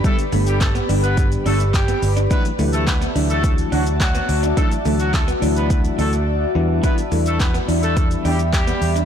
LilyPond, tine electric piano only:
\new Staff \with { instrumentName = "Tine electric piano" } { \time 4/4 \key d \mixolydian \tempo 4 = 106 <d g b d' g'>8 <d g b d' a'>8 r8 <d g b d' g'>4. r4 | <e fis a d' e'>8 <e fis a d' e'>8 r8 <e fis a d' e'>4. r4 | <e fis a d' e'>8 <e fis a d' fis'>8 r8 <e fis a d' e'>4. r8 <e g b d' e'>8~ | <e g b d' e'>8 <e g b d' e'>8 r8 <e g b d' e'>4. r4 | }